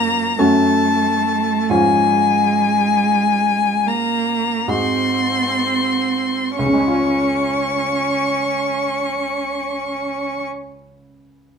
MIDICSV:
0, 0, Header, 1, 4, 480
1, 0, Start_track
1, 0, Key_signature, -5, "major"
1, 0, Tempo, 1307190
1, 628, Tempo, 1388889
1, 629, Time_signature, 3, 2, 24, 8
1, 1108, Tempo, 1587302
1, 1588, Tempo, 1892744
1, 2068, Tempo, 1807229
1, 3397, End_track
2, 0, Start_track
2, 0, Title_t, "Violin"
2, 0, Program_c, 0, 40
2, 0, Note_on_c, 0, 82, 76
2, 146, Note_on_c, 0, 81, 70
2, 152, Note_off_c, 0, 82, 0
2, 630, Note_off_c, 0, 81, 0
2, 635, Note_on_c, 0, 80, 71
2, 1343, Note_on_c, 0, 82, 58
2, 1348, Note_off_c, 0, 80, 0
2, 1588, Note_on_c, 0, 84, 56
2, 1592, Note_off_c, 0, 82, 0
2, 2064, Note_off_c, 0, 84, 0
2, 2066, Note_on_c, 0, 85, 50
2, 3097, Note_off_c, 0, 85, 0
2, 3397, End_track
3, 0, Start_track
3, 0, Title_t, "Grand piano"
3, 0, Program_c, 1, 0
3, 0, Control_c, 1, 64, 127
3, 0, Note_on_c, 1, 42, 41
3, 0, Note_on_c, 1, 58, 41
3, 0, Note_on_c, 1, 61, 35
3, 0, Note_on_c, 1, 65, 38
3, 128, Note_off_c, 1, 42, 0
3, 129, Note_off_c, 1, 58, 0
3, 129, Note_off_c, 1, 61, 0
3, 132, Note_off_c, 1, 65, 0
3, 142, Note_on_c, 1, 42, 45
3, 142, Note_on_c, 1, 57, 40
3, 145, Note_on_c, 1, 61, 39
3, 146, Note_on_c, 1, 66, 35
3, 150, Control_c, 1, 64, 0
3, 225, Control_c, 1, 64, 127
3, 614, Note_off_c, 1, 42, 0
3, 614, Note_off_c, 1, 57, 0
3, 615, Note_off_c, 1, 61, 0
3, 616, Note_off_c, 1, 66, 0
3, 623, Note_on_c, 1, 44, 42
3, 625, Note_on_c, 1, 53, 38
3, 627, Note_on_c, 1, 61, 38
3, 627, Note_on_c, 1, 65, 34
3, 637, Control_c, 1, 64, 0
3, 710, Control_c, 1, 64, 127
3, 1574, Note_off_c, 1, 44, 0
3, 1575, Note_off_c, 1, 53, 0
3, 1576, Note_off_c, 1, 61, 0
3, 1576, Note_off_c, 1, 65, 0
3, 1585, Note_on_c, 1, 44, 38
3, 1587, Note_on_c, 1, 56, 31
3, 1588, Note_on_c, 1, 63, 33
3, 1590, Note_on_c, 1, 66, 29
3, 1595, Control_c, 1, 64, 0
3, 1671, Control_c, 1, 64, 127
3, 2057, Note_off_c, 1, 44, 0
3, 2058, Note_off_c, 1, 56, 0
3, 2058, Note_off_c, 1, 63, 0
3, 2059, Note_off_c, 1, 66, 0
3, 2071, Note_on_c, 1, 37, 35
3, 2077, Control_c, 1, 64, 0
3, 2090, Note_on_c, 1, 49, 36
3, 2109, Note_on_c, 1, 56, 35
3, 2126, Note_on_c, 1, 61, 37
3, 2146, Note_on_c, 1, 65, 37
3, 2149, Control_c, 1, 64, 127
3, 2164, Note_on_c, 1, 73, 36
3, 3102, Note_off_c, 1, 37, 0
3, 3121, Note_off_c, 1, 49, 0
3, 3140, Note_off_c, 1, 56, 0
3, 3157, Note_off_c, 1, 61, 0
3, 3177, Note_off_c, 1, 65, 0
3, 3195, Note_off_c, 1, 73, 0
3, 3397, End_track
4, 0, Start_track
4, 0, Title_t, "Cello"
4, 0, Program_c, 2, 42
4, 0, Note_on_c, 2, 58, 62
4, 141, Note_off_c, 2, 58, 0
4, 143, Note_on_c, 2, 57, 55
4, 628, Note_on_c, 2, 56, 66
4, 633, Note_off_c, 2, 57, 0
4, 1339, Note_on_c, 2, 58, 51
4, 1344, Note_off_c, 2, 56, 0
4, 1589, Note_on_c, 2, 60, 46
4, 1593, Note_off_c, 2, 58, 0
4, 2066, Note_off_c, 2, 60, 0
4, 2067, Note_on_c, 2, 61, 47
4, 3098, Note_off_c, 2, 61, 0
4, 3397, End_track
0, 0, End_of_file